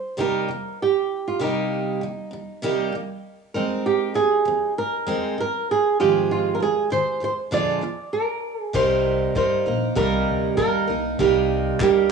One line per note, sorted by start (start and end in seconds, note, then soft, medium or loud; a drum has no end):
0.00 0.20 C5 medium
0.17 0.47 C3 medium
0.17 0.48 G3 medium
0.17 0.48 A#3 medium
0.17 0.49 D#4 medium
0.17 0.49 G4 medium
0.17 0.82 A#4 medium
0.48 0.73 C3 soft
0.48 0.74 G3 soft
0.82 1.28 G4 medium
1.28 1.42 F4 medium
1.39 2.00 C3 medium
1.39 2.01 G3 medium
1.39 2.04 A#3 medium
1.39 2.63 D#4 medium
1.39 2.02 G4 medium
1.43 1.99 D#4 medium
2.01 2.26 C3 medium
2.01 2.27 G3 medium
2.31 2.56 C3 soft
2.31 2.57 G3 medium
2.62 2.91 C3 medium
2.62 2.93 G3 medium
2.62 2.94 A#3 medium
2.62 2.94 D#4 medium
2.62 2.94 G4 medium
2.92 3.17 C3 soft
2.92 3.19 G3 medium
3.54 4.14 G#3 soft
3.54 4.17 C4 medium
3.54 5.07 D#4 medium
3.54 4.16 A#4 medium
3.86 4.15 G4 medium
4.14 4.39 G#3 soft
4.14 4.41 C4 soft
4.14 4.73 G#4 medium
4.45 4.70 G#3 medium
4.45 4.71 C4 medium
4.78 5.39 A#4 medium
5.06 5.37 G#3 medium
5.06 5.38 C4 medium
5.06 5.38 D#4 medium
5.06 5.39 A#4 medium
5.38 5.62 G#3 soft
5.38 5.64 C4 soft
5.38 5.71 A#4 medium
5.71 6.00 G#4 medium
6.00 6.59 G#2 soft
6.00 6.61 D#3 soft
6.00 6.63 F3 soft
6.00 7.52 G#3 medium
6.00 6.61 C4 soft
6.00 6.65 F4 medium
6.00 6.31 G4 medium
6.31 6.55 F4 medium
6.55 6.61 A#4 medium
6.60 6.85 G#2 soft
6.60 6.86 D#3 soft
6.60 6.86 F3 soft
6.60 6.91 G#4 medium
6.90 7.15 G#2 medium
6.90 7.16 D#3 medium
6.90 7.16 F3 medium
6.90 7.23 C5 medium
7.20 7.45 G#2 soft
7.20 7.46 D#3 soft
7.20 7.46 F3 soft
7.20 7.32 C5 medium
7.51 7.80 A#2 medium
7.51 7.81 D3 medium
7.51 7.82 F3 medium
7.51 7.83 G#3 medium
7.51 7.83 D4 medium
7.51 7.83 F4 medium
7.51 8.40 D5 medium
7.81 8.06 A#2 soft
7.81 8.07 D3 soft
7.81 8.08 F3 soft
8.13 8.62 A#4 medium
8.62 8.76 G#4 medium
8.73 9.24 C2 medium
8.73 9.35 C3 medium
8.73 9.34 G3 medium
8.73 9.35 A#3 medium
8.73 9.36 D#4 medium
8.73 9.37 A#4 medium
8.73 9.35 C5 medium
8.73 kick medium
8.73 crash medium
9.35 9.61 G1 medium
9.35 9.66 G3 soft
9.35 9.66 A#3 medium
9.35 9.65 D#4 medium
9.35 9.64 A#4 medium
9.35 9.96 C5 medium
9.35 kick loud
9.66 9.91 A#1 medium
9.66 9.95 A#3 soft
9.66 9.95 D#4 soft
9.66 9.96 A#4 soft
9.95 10.22 C2 loud
9.95 10.57 C3 medium
9.95 10.56 G3 medium
9.95 10.57 A#3 medium
9.95 10.58 D#4 medium
9.95 10.54 A#4 medium
9.95 10.59 A#4 medium
9.95 kick medium
10.28 10.53 D2 medium
10.57 10.83 D#2 medium
10.57 10.88 G3 medium
10.57 10.88 A#3 medium
10.57 10.88 D#4 medium
10.57 11.20 A#4 medium
10.57 10.86 A#4 medium
10.57 kick loud
10.88 11.14 C2 medium
10.88 11.19 A#3 soft
10.88 11.19 D#4 soft
10.88 11.19 A#4 soft
11.19 11.69 C2 medium
11.19 11.80 C3 medium
11.19 11.78 G3 medium
11.19 11.80 A#3 medium
11.19 11.82 D#4 medium
11.19 11.81 G4 medium
11.19 11.82 A#4 medium
11.19 kick medium
11.80 12.11 D2 medium
11.80 12.11 G3 soft
11.80 12.11 A#3 medium
11.80 12.10 D#4 medium
11.80 12.12 G4 medium
11.80 12.09 A#4 medium
11.80 kick loud
11.80 clap medium